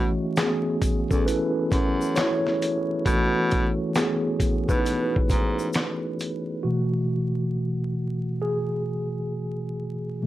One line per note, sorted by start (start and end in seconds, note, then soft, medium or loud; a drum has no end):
0.00 0.11 B2 loud
0.00 0.78 E3 soft
0.00 0.34 A3 medium
0.00 0.79 C#4 medium
0.00 0.33 F#4 medium
0.00 0.79 A4 medium
0.36 1.08 B3 medium
0.36 1.13 G#4 loud
0.36 snare loud
0.36 clap medium
0.36 closed hi-hat medium
0.36 shaker medium
0.82 kick medium
0.82 closed hi-hat medium
0.82 shaker medium
1.11 1.24 E2 medium
1.11 1.26 C#4 medium
1.11 1.27 A4 medium
1.11 kick medium
1.11 shaker soft
1.26 2.13 E4 medium
1.26 2.19 B4 medium
1.26 closed hi-hat medium
1.26 shaker medium
1.72 2.35 F#2 medium
1.72 kick medium
1.72 closed hi-hat medium
1.72 shaker medium
2.01 shaker medium
2.16 2.87 E4 medium
2.16 2.86 C#5 loud
2.16 snare loud
2.16 clap loud
2.16 closed hi-hat medium
2.16 shaker medium
2.47 snare soft
2.62 closed hi-hat medium
2.62 shaker soft
3.06 3.69 B2 loud
3.06 6.60 E3 medium
3.06 3.92 A3 medium
3.06 6.61 C#4 medium
3.06 3.98 F#4 medium
3.06 6.61 A4 soft
3.06 kick loud
3.06 closed hi-hat medium
3.06 shaker medium
3.51 kick loud
3.51 closed hi-hat medium
3.51 shaker soft
3.95 4.66 B3 medium
3.95 4.66 G#4 medium
3.95 snare loud
3.95 clap medium
3.95 closed hi-hat medium
3.95 shaker medium
4.40 kick medium
4.40 closed hi-hat medium
4.40 shaker medium
4.69 5.21 B2 medium
4.69 6.16 D#4 medium
4.69 6.15 B4 medium
4.69 kick medium
4.69 shaker soft
4.86 closed hi-hat medium
4.86 shaker medium
5.16 kick medium
5.29 5.68 G#2 medium
5.29 kick medium
5.29 closed hi-hat medium
5.29 shaker medium
5.59 shaker medium
5.73 snare loud
5.73 clap medium
5.73 closed hi-hat medium
5.73 shaker medium
6.20 closed hi-hat medium
6.20 shaker soft
6.63 7.29 B2 soft
6.63 7.29 E3 soft
6.63 7.30 A3 medium
6.63 8.39 F#4 medium
8.42 9.73 G#4 medium
10.22 10.27 B2 soft
10.22 10.27 E3 soft
10.22 10.27 A3 medium